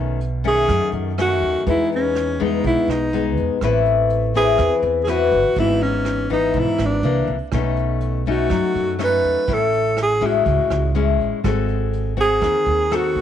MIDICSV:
0, 0, Header, 1, 5, 480
1, 0, Start_track
1, 0, Key_signature, 4, "major"
1, 0, Tempo, 488998
1, 1623, Time_signature, 4, 2, 24, 8
1, 12971, End_track
2, 0, Start_track
2, 0, Title_t, "Alto saxophone"
2, 0, Program_c, 0, 65
2, 467, Note_on_c, 0, 68, 101
2, 893, Note_off_c, 0, 68, 0
2, 1188, Note_on_c, 0, 66, 100
2, 1613, Note_off_c, 0, 66, 0
2, 1666, Note_on_c, 0, 64, 92
2, 1869, Note_off_c, 0, 64, 0
2, 1919, Note_on_c, 0, 61, 78
2, 2393, Note_on_c, 0, 63, 75
2, 2407, Note_off_c, 0, 61, 0
2, 2607, Note_off_c, 0, 63, 0
2, 2616, Note_on_c, 0, 64, 93
2, 2846, Note_on_c, 0, 63, 76
2, 2861, Note_off_c, 0, 64, 0
2, 3314, Note_off_c, 0, 63, 0
2, 4286, Note_on_c, 0, 68, 95
2, 4721, Note_off_c, 0, 68, 0
2, 4941, Note_on_c, 0, 68, 64
2, 5007, Note_on_c, 0, 66, 102
2, 5022, Note_off_c, 0, 68, 0
2, 5474, Note_off_c, 0, 66, 0
2, 5491, Note_on_c, 0, 64, 93
2, 5720, Note_on_c, 0, 61, 79
2, 5735, Note_off_c, 0, 64, 0
2, 6191, Note_off_c, 0, 61, 0
2, 6212, Note_on_c, 0, 63, 76
2, 6468, Note_on_c, 0, 64, 83
2, 6482, Note_off_c, 0, 63, 0
2, 6727, Note_on_c, 0, 62, 73
2, 6742, Note_off_c, 0, 64, 0
2, 7175, Note_off_c, 0, 62, 0
2, 8151, Note_on_c, 0, 66, 87
2, 8807, Note_off_c, 0, 66, 0
2, 8873, Note_on_c, 0, 71, 100
2, 9359, Note_on_c, 0, 69, 87
2, 9374, Note_off_c, 0, 71, 0
2, 9810, Note_off_c, 0, 69, 0
2, 9840, Note_on_c, 0, 68, 87
2, 10073, Note_on_c, 0, 66, 72
2, 10087, Note_off_c, 0, 68, 0
2, 10767, Note_off_c, 0, 66, 0
2, 11979, Note_on_c, 0, 68, 99
2, 12716, Note_on_c, 0, 66, 93
2, 12731, Note_off_c, 0, 68, 0
2, 12971, Note_off_c, 0, 66, 0
2, 12971, End_track
3, 0, Start_track
3, 0, Title_t, "Nylon-string guitar"
3, 0, Program_c, 1, 24
3, 0, Note_on_c, 1, 47, 47
3, 0, Note_on_c, 1, 51, 52
3, 0, Note_on_c, 1, 57, 48
3, 0, Note_on_c, 1, 61, 55
3, 185, Note_off_c, 1, 51, 0
3, 189, Note_off_c, 1, 57, 0
3, 191, Note_off_c, 1, 61, 0
3, 432, Note_on_c, 1, 51, 57
3, 438, Note_on_c, 1, 57, 56
3, 443, Note_on_c, 1, 61, 64
3, 643, Note_off_c, 1, 47, 0
3, 676, Note_on_c, 1, 42, 49
3, 1110, Note_off_c, 1, 51, 0
3, 1111, Note_off_c, 1, 57, 0
3, 1114, Note_off_c, 1, 61, 0
3, 1156, Note_on_c, 1, 51, 46
3, 1161, Note_on_c, 1, 57, 52
3, 1163, Note_on_c, 1, 61, 57
3, 1591, Note_off_c, 1, 51, 0
3, 1593, Note_off_c, 1, 61, 0
3, 1594, Note_off_c, 1, 57, 0
3, 1605, Note_off_c, 1, 42, 0
3, 1634, Note_on_c, 1, 52, 46
3, 1637, Note_on_c, 1, 56, 49
3, 1642, Note_on_c, 1, 59, 53
3, 1646, Note_on_c, 1, 63, 58
3, 2312, Note_off_c, 1, 56, 0
3, 2313, Note_off_c, 1, 59, 0
3, 2313, Note_off_c, 1, 63, 0
3, 2354, Note_on_c, 1, 56, 64
3, 2362, Note_on_c, 1, 59, 62
3, 2369, Note_on_c, 1, 63, 68
3, 2564, Note_off_c, 1, 52, 0
3, 2590, Note_on_c, 1, 47, 50
3, 3030, Note_off_c, 1, 56, 0
3, 3032, Note_off_c, 1, 59, 0
3, 3037, Note_off_c, 1, 63, 0
3, 3073, Note_on_c, 1, 56, 52
3, 3081, Note_on_c, 1, 59, 48
3, 3084, Note_on_c, 1, 63, 59
3, 3510, Note_off_c, 1, 56, 0
3, 3512, Note_off_c, 1, 59, 0
3, 3514, Note_off_c, 1, 63, 0
3, 3521, Note_off_c, 1, 47, 0
3, 3561, Note_on_c, 1, 57, 51
3, 3566, Note_on_c, 1, 60, 51
3, 3568, Note_on_c, 1, 64, 58
3, 3573, Note_on_c, 1, 71, 59
3, 4234, Note_off_c, 1, 60, 0
3, 4236, Note_off_c, 1, 64, 0
3, 4239, Note_off_c, 1, 71, 0
3, 4273, Note_on_c, 1, 60, 62
3, 4281, Note_on_c, 1, 64, 63
3, 4286, Note_on_c, 1, 71, 65
3, 4487, Note_off_c, 1, 57, 0
3, 4513, Note_on_c, 1, 52, 53
3, 4950, Note_off_c, 1, 60, 0
3, 4951, Note_off_c, 1, 71, 0
3, 4952, Note_off_c, 1, 64, 0
3, 4987, Note_on_c, 1, 60, 49
3, 4993, Note_on_c, 1, 64, 45
3, 5001, Note_on_c, 1, 71, 60
3, 5294, Note_off_c, 1, 60, 0
3, 5295, Note_off_c, 1, 64, 0
3, 5300, Note_off_c, 1, 71, 0
3, 5443, Note_off_c, 1, 52, 0
3, 5473, Note_on_c, 1, 44, 50
3, 5476, Note_on_c, 1, 52, 57
3, 5481, Note_on_c, 1, 59, 53
3, 5481, Note_on_c, 1, 63, 50
3, 6149, Note_off_c, 1, 52, 0
3, 6151, Note_off_c, 1, 59, 0
3, 6153, Note_off_c, 1, 63, 0
3, 6185, Note_on_c, 1, 52, 58
3, 6191, Note_on_c, 1, 59, 55
3, 6195, Note_on_c, 1, 63, 61
3, 6405, Note_off_c, 1, 44, 0
3, 6429, Note_on_c, 1, 44, 48
3, 6865, Note_off_c, 1, 52, 0
3, 6868, Note_off_c, 1, 59, 0
3, 6869, Note_off_c, 1, 63, 0
3, 6882, Note_off_c, 1, 44, 0
3, 6911, Note_on_c, 1, 52, 51
3, 6917, Note_on_c, 1, 58, 52
3, 6919, Note_on_c, 1, 62, 52
3, 7216, Note_off_c, 1, 52, 0
3, 7217, Note_off_c, 1, 58, 0
3, 7220, Note_off_c, 1, 62, 0
3, 7394, Note_on_c, 1, 47, 51
3, 7399, Note_on_c, 1, 61, 52
3, 7400, Note_on_c, 1, 57, 50
3, 7402, Note_on_c, 1, 63, 50
3, 8071, Note_off_c, 1, 57, 0
3, 8072, Note_off_c, 1, 63, 0
3, 8073, Note_off_c, 1, 61, 0
3, 8118, Note_on_c, 1, 57, 57
3, 8118, Note_on_c, 1, 61, 57
3, 8126, Note_on_c, 1, 63, 66
3, 8324, Note_off_c, 1, 47, 0
3, 8352, Note_on_c, 1, 54, 49
3, 8791, Note_off_c, 1, 57, 0
3, 8791, Note_off_c, 1, 61, 0
3, 8796, Note_off_c, 1, 63, 0
3, 8821, Note_on_c, 1, 57, 52
3, 8828, Note_on_c, 1, 61, 52
3, 8831, Note_on_c, 1, 63, 63
3, 9263, Note_off_c, 1, 57, 0
3, 9266, Note_off_c, 1, 63, 0
3, 9267, Note_off_c, 1, 61, 0
3, 9283, Note_off_c, 1, 54, 0
3, 9304, Note_on_c, 1, 45, 47
3, 9308, Note_on_c, 1, 61, 49
3, 9313, Note_on_c, 1, 64, 55
3, 9986, Note_off_c, 1, 61, 0
3, 9989, Note_off_c, 1, 64, 0
3, 10021, Note_on_c, 1, 56, 54
3, 10028, Note_on_c, 1, 61, 57
3, 10030, Note_on_c, 1, 64, 66
3, 10239, Note_off_c, 1, 45, 0
3, 10258, Note_on_c, 1, 45, 46
3, 10703, Note_off_c, 1, 56, 0
3, 10705, Note_off_c, 1, 61, 0
3, 10707, Note_off_c, 1, 64, 0
3, 10745, Note_on_c, 1, 56, 56
3, 10753, Note_on_c, 1, 61, 50
3, 10758, Note_on_c, 1, 64, 55
3, 11185, Note_off_c, 1, 56, 0
3, 11189, Note_off_c, 1, 61, 0
3, 11190, Note_off_c, 1, 64, 0
3, 11195, Note_off_c, 1, 45, 0
3, 11226, Note_on_c, 1, 56, 46
3, 11232, Note_on_c, 1, 60, 48
3, 11236, Note_on_c, 1, 66, 54
3, 11237, Note_on_c, 1, 69, 61
3, 11907, Note_off_c, 1, 60, 0
3, 11907, Note_off_c, 1, 66, 0
3, 11911, Note_off_c, 1, 69, 0
3, 11945, Note_on_c, 1, 60, 67
3, 11951, Note_on_c, 1, 66, 56
3, 12161, Note_off_c, 1, 56, 0
3, 12183, Note_on_c, 1, 51, 46
3, 12624, Note_off_c, 1, 60, 0
3, 12627, Note_off_c, 1, 66, 0
3, 12673, Note_on_c, 1, 60, 50
3, 12679, Note_on_c, 1, 66, 54
3, 12680, Note_on_c, 1, 69, 58
3, 12971, Note_off_c, 1, 51, 0
3, 12971, Note_off_c, 1, 60, 0
3, 12971, Note_off_c, 1, 66, 0
3, 12971, Note_off_c, 1, 69, 0
3, 12971, End_track
4, 0, Start_track
4, 0, Title_t, "Upright bass"
4, 0, Program_c, 2, 32
4, 0, Note_on_c, 2, 35, 83
4, 628, Note_off_c, 2, 35, 0
4, 675, Note_on_c, 2, 42, 81
4, 781, Note_off_c, 2, 42, 0
4, 904, Note_on_c, 2, 42, 79
4, 1395, Note_off_c, 2, 42, 0
4, 1395, Note_on_c, 2, 39, 65
4, 1501, Note_off_c, 2, 39, 0
4, 1637, Note_on_c, 2, 40, 85
4, 2550, Note_off_c, 2, 40, 0
4, 2595, Note_on_c, 2, 35, 80
4, 2701, Note_off_c, 2, 35, 0
4, 2824, Note_on_c, 2, 35, 75
4, 3307, Note_off_c, 2, 35, 0
4, 3307, Note_on_c, 2, 40, 75
4, 3416, Note_off_c, 2, 40, 0
4, 3547, Note_on_c, 2, 33, 77
4, 4465, Note_off_c, 2, 33, 0
4, 4504, Note_on_c, 2, 40, 89
4, 4615, Note_off_c, 2, 40, 0
4, 4736, Note_on_c, 2, 40, 77
4, 5219, Note_on_c, 2, 31, 76
4, 5233, Note_off_c, 2, 40, 0
4, 5332, Note_off_c, 2, 31, 0
4, 5462, Note_on_c, 2, 32, 83
4, 6382, Note_off_c, 2, 32, 0
4, 6418, Note_on_c, 2, 35, 80
4, 6531, Note_off_c, 2, 35, 0
4, 6664, Note_on_c, 2, 32, 75
4, 6886, Note_off_c, 2, 32, 0
4, 6900, Note_on_c, 2, 36, 85
4, 7124, Note_off_c, 2, 36, 0
4, 7139, Note_on_c, 2, 36, 65
4, 7252, Note_off_c, 2, 36, 0
4, 7386, Note_on_c, 2, 35, 84
4, 8305, Note_off_c, 2, 35, 0
4, 8346, Note_on_c, 2, 42, 77
4, 8456, Note_off_c, 2, 42, 0
4, 8584, Note_on_c, 2, 42, 73
4, 9064, Note_off_c, 2, 42, 0
4, 9064, Note_on_c, 2, 40, 72
4, 9175, Note_off_c, 2, 40, 0
4, 9307, Note_on_c, 2, 33, 84
4, 10225, Note_off_c, 2, 33, 0
4, 10269, Note_on_c, 2, 37, 84
4, 10377, Note_off_c, 2, 37, 0
4, 10507, Note_on_c, 2, 37, 76
4, 10990, Note_off_c, 2, 37, 0
4, 10990, Note_on_c, 2, 33, 65
4, 11098, Note_off_c, 2, 33, 0
4, 11232, Note_on_c, 2, 32, 85
4, 12147, Note_off_c, 2, 32, 0
4, 12186, Note_on_c, 2, 39, 87
4, 12296, Note_off_c, 2, 39, 0
4, 12427, Note_on_c, 2, 39, 76
4, 12912, Note_on_c, 2, 32, 68
4, 12927, Note_off_c, 2, 39, 0
4, 12971, Note_off_c, 2, 32, 0
4, 12971, End_track
5, 0, Start_track
5, 0, Title_t, "Drums"
5, 202, Note_on_c, 9, 42, 39
5, 300, Note_off_c, 9, 42, 0
5, 434, Note_on_c, 9, 36, 24
5, 437, Note_on_c, 9, 42, 29
5, 532, Note_off_c, 9, 36, 0
5, 535, Note_off_c, 9, 42, 0
5, 673, Note_on_c, 9, 36, 54
5, 673, Note_on_c, 9, 37, 52
5, 673, Note_on_c, 9, 42, 39
5, 771, Note_off_c, 9, 36, 0
5, 771, Note_off_c, 9, 37, 0
5, 771, Note_off_c, 9, 42, 0
5, 913, Note_on_c, 9, 42, 26
5, 1011, Note_off_c, 9, 42, 0
5, 1160, Note_on_c, 9, 37, 53
5, 1160, Note_on_c, 9, 42, 39
5, 1259, Note_off_c, 9, 37, 0
5, 1259, Note_off_c, 9, 42, 0
5, 1395, Note_on_c, 9, 36, 21
5, 1400, Note_on_c, 9, 42, 25
5, 1493, Note_off_c, 9, 36, 0
5, 1498, Note_off_c, 9, 42, 0
5, 1636, Note_on_c, 9, 36, 54
5, 1645, Note_on_c, 9, 42, 42
5, 1734, Note_off_c, 9, 36, 0
5, 1743, Note_off_c, 9, 42, 0
5, 1883, Note_on_c, 9, 42, 26
5, 1982, Note_off_c, 9, 42, 0
5, 2114, Note_on_c, 9, 37, 46
5, 2114, Note_on_c, 9, 42, 34
5, 2212, Note_off_c, 9, 37, 0
5, 2212, Note_off_c, 9, 42, 0
5, 2354, Note_on_c, 9, 36, 23
5, 2365, Note_on_c, 9, 42, 26
5, 2453, Note_off_c, 9, 36, 0
5, 2463, Note_off_c, 9, 42, 0
5, 2596, Note_on_c, 9, 36, 51
5, 2606, Note_on_c, 9, 42, 38
5, 2694, Note_off_c, 9, 36, 0
5, 2705, Note_off_c, 9, 42, 0
5, 2844, Note_on_c, 9, 37, 56
5, 2844, Note_on_c, 9, 42, 21
5, 2942, Note_off_c, 9, 37, 0
5, 2942, Note_off_c, 9, 42, 0
5, 3075, Note_on_c, 9, 42, 36
5, 3174, Note_off_c, 9, 42, 0
5, 3309, Note_on_c, 9, 36, 21
5, 3310, Note_on_c, 9, 42, 23
5, 3408, Note_off_c, 9, 36, 0
5, 3408, Note_off_c, 9, 42, 0
5, 3547, Note_on_c, 9, 37, 56
5, 3547, Note_on_c, 9, 42, 40
5, 3550, Note_on_c, 9, 36, 54
5, 3645, Note_off_c, 9, 37, 0
5, 3645, Note_off_c, 9, 42, 0
5, 3648, Note_off_c, 9, 36, 0
5, 3787, Note_on_c, 9, 42, 25
5, 3885, Note_off_c, 9, 42, 0
5, 4023, Note_on_c, 9, 42, 37
5, 4121, Note_off_c, 9, 42, 0
5, 4261, Note_on_c, 9, 42, 25
5, 4265, Note_on_c, 9, 36, 23
5, 4359, Note_off_c, 9, 42, 0
5, 4363, Note_off_c, 9, 36, 0
5, 4497, Note_on_c, 9, 37, 54
5, 4497, Note_on_c, 9, 42, 41
5, 4504, Note_on_c, 9, 36, 57
5, 4595, Note_off_c, 9, 37, 0
5, 4595, Note_off_c, 9, 42, 0
5, 4602, Note_off_c, 9, 36, 0
5, 4737, Note_on_c, 9, 42, 26
5, 4835, Note_off_c, 9, 42, 0
5, 4978, Note_on_c, 9, 37, 55
5, 4978, Note_on_c, 9, 42, 41
5, 5077, Note_off_c, 9, 37, 0
5, 5077, Note_off_c, 9, 42, 0
5, 5222, Note_on_c, 9, 36, 24
5, 5222, Note_on_c, 9, 42, 24
5, 5320, Note_off_c, 9, 42, 0
5, 5321, Note_off_c, 9, 36, 0
5, 5455, Note_on_c, 9, 42, 43
5, 5462, Note_on_c, 9, 36, 59
5, 5553, Note_off_c, 9, 42, 0
5, 5560, Note_off_c, 9, 36, 0
5, 5707, Note_on_c, 9, 42, 25
5, 5805, Note_off_c, 9, 42, 0
5, 5939, Note_on_c, 9, 37, 47
5, 5939, Note_on_c, 9, 42, 38
5, 6037, Note_off_c, 9, 37, 0
5, 6037, Note_off_c, 9, 42, 0
5, 6177, Note_on_c, 9, 42, 29
5, 6182, Note_on_c, 9, 36, 24
5, 6275, Note_off_c, 9, 42, 0
5, 6280, Note_off_c, 9, 36, 0
5, 6413, Note_on_c, 9, 42, 38
5, 6421, Note_on_c, 9, 36, 51
5, 6511, Note_off_c, 9, 42, 0
5, 6519, Note_off_c, 9, 36, 0
5, 6660, Note_on_c, 9, 37, 55
5, 6660, Note_on_c, 9, 42, 25
5, 6758, Note_off_c, 9, 37, 0
5, 6758, Note_off_c, 9, 42, 0
5, 6897, Note_on_c, 9, 42, 35
5, 6995, Note_off_c, 9, 42, 0
5, 7140, Note_on_c, 9, 42, 21
5, 7143, Note_on_c, 9, 36, 21
5, 7238, Note_off_c, 9, 42, 0
5, 7241, Note_off_c, 9, 36, 0
5, 7378, Note_on_c, 9, 37, 56
5, 7378, Note_on_c, 9, 42, 38
5, 7386, Note_on_c, 9, 36, 56
5, 7476, Note_off_c, 9, 37, 0
5, 7476, Note_off_c, 9, 42, 0
5, 7484, Note_off_c, 9, 36, 0
5, 7620, Note_on_c, 9, 42, 24
5, 7719, Note_off_c, 9, 42, 0
5, 7859, Note_on_c, 9, 42, 36
5, 7957, Note_off_c, 9, 42, 0
5, 8107, Note_on_c, 9, 36, 25
5, 8107, Note_on_c, 9, 42, 25
5, 8205, Note_off_c, 9, 36, 0
5, 8205, Note_off_c, 9, 42, 0
5, 8341, Note_on_c, 9, 37, 51
5, 8341, Note_on_c, 9, 42, 40
5, 8346, Note_on_c, 9, 36, 59
5, 8439, Note_off_c, 9, 37, 0
5, 8439, Note_off_c, 9, 42, 0
5, 8444, Note_off_c, 9, 36, 0
5, 8594, Note_on_c, 9, 42, 26
5, 8692, Note_off_c, 9, 42, 0
5, 8828, Note_on_c, 9, 37, 49
5, 8828, Note_on_c, 9, 42, 39
5, 8926, Note_off_c, 9, 37, 0
5, 8926, Note_off_c, 9, 42, 0
5, 9062, Note_on_c, 9, 42, 25
5, 9066, Note_on_c, 9, 36, 21
5, 9160, Note_off_c, 9, 42, 0
5, 9164, Note_off_c, 9, 36, 0
5, 9298, Note_on_c, 9, 42, 43
5, 9305, Note_on_c, 9, 36, 57
5, 9397, Note_off_c, 9, 42, 0
5, 9403, Note_off_c, 9, 36, 0
5, 9544, Note_on_c, 9, 42, 26
5, 9642, Note_off_c, 9, 42, 0
5, 9786, Note_on_c, 9, 37, 53
5, 9786, Note_on_c, 9, 42, 40
5, 9884, Note_off_c, 9, 37, 0
5, 9884, Note_off_c, 9, 42, 0
5, 10024, Note_on_c, 9, 42, 27
5, 10027, Note_on_c, 9, 36, 25
5, 10123, Note_off_c, 9, 42, 0
5, 10125, Note_off_c, 9, 36, 0
5, 10267, Note_on_c, 9, 36, 56
5, 10268, Note_on_c, 9, 42, 38
5, 10365, Note_off_c, 9, 36, 0
5, 10366, Note_off_c, 9, 42, 0
5, 10507, Note_on_c, 9, 37, 53
5, 10507, Note_on_c, 9, 42, 25
5, 10605, Note_off_c, 9, 37, 0
5, 10605, Note_off_c, 9, 42, 0
5, 10753, Note_on_c, 9, 42, 37
5, 10851, Note_off_c, 9, 42, 0
5, 10991, Note_on_c, 9, 36, 21
5, 11000, Note_on_c, 9, 42, 23
5, 11089, Note_off_c, 9, 36, 0
5, 11098, Note_off_c, 9, 42, 0
5, 11231, Note_on_c, 9, 36, 58
5, 11234, Note_on_c, 9, 37, 58
5, 11234, Note_on_c, 9, 42, 43
5, 11330, Note_off_c, 9, 36, 0
5, 11332, Note_off_c, 9, 37, 0
5, 11332, Note_off_c, 9, 42, 0
5, 11467, Note_on_c, 9, 42, 22
5, 11565, Note_off_c, 9, 42, 0
5, 11713, Note_on_c, 9, 42, 33
5, 11812, Note_off_c, 9, 42, 0
5, 11949, Note_on_c, 9, 36, 22
5, 11954, Note_on_c, 9, 42, 26
5, 12048, Note_off_c, 9, 36, 0
5, 12052, Note_off_c, 9, 42, 0
5, 12191, Note_on_c, 9, 36, 56
5, 12196, Note_on_c, 9, 37, 53
5, 12196, Note_on_c, 9, 42, 41
5, 12289, Note_off_c, 9, 36, 0
5, 12294, Note_off_c, 9, 37, 0
5, 12294, Note_off_c, 9, 42, 0
5, 12437, Note_on_c, 9, 42, 22
5, 12535, Note_off_c, 9, 42, 0
5, 12679, Note_on_c, 9, 37, 53
5, 12679, Note_on_c, 9, 42, 40
5, 12777, Note_off_c, 9, 37, 0
5, 12777, Note_off_c, 9, 42, 0
5, 12913, Note_on_c, 9, 36, 22
5, 12921, Note_on_c, 9, 42, 26
5, 12971, Note_off_c, 9, 36, 0
5, 12971, Note_off_c, 9, 42, 0
5, 12971, End_track
0, 0, End_of_file